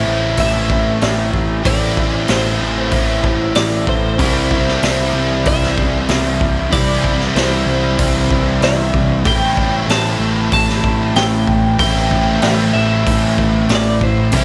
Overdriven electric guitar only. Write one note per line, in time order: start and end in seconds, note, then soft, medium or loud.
0.00 1.62 A2 medium
0.00 1.64 E3 loud
0.00 1.63 A3 medium
0.00 1.66 C4 medium
0.00 1.66 E4 loud
1.63 4.16 A2 medium
1.63 4.19 E3 medium
1.63 4.17 A3 medium
1.63 4.20 C4 loud
1.63 4.21 E4 medium
4.18 6.70 C3 medium
4.18 6.71 E3 medium
4.18 6.72 G3 loud
4.18 6.73 C4 loud
4.18 6.73 E4 loud
6.71 9.23 C3 medium
6.71 9.25 E3 loud
6.71 9.26 G3 medium
6.71 9.27 C4 loud
6.71 9.27 E4 loud
9.24 11.77 A2 medium
9.24 11.79 E3 medium
9.24 11.78 A3 medium
9.24 11.81 C4 loud
9.24 11.82 E4 medium
11.78 14.31 A2 loud
11.78 14.33 E3 loud
11.78 14.32 A3 loud
11.78 14.35 C4 loud
11.78 14.36 E4 medium
14.32 14.45 C3 medium
14.32 14.45 E3 loud
14.32 14.45 G3 loud
14.32 14.45 C4 loud
14.32 14.45 E4 loud